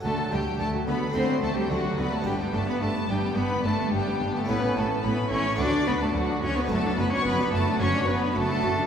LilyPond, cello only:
\new Staff \with { instrumentName = "Cello" } { \time 4/4 \key d \major \tempo 4 = 108 a8 g8 a8 b8 c'8 a16 g16 fis8 b16 a16 | g8 a16 b16 a8 g8 b8 a8 g8. a16 | b8 a8 b8 cis'8 d'8 b16 a16 fis8 cis'16 b16 | a8 b16 cis'16 b8 a8 cis'8 b8 a4 | }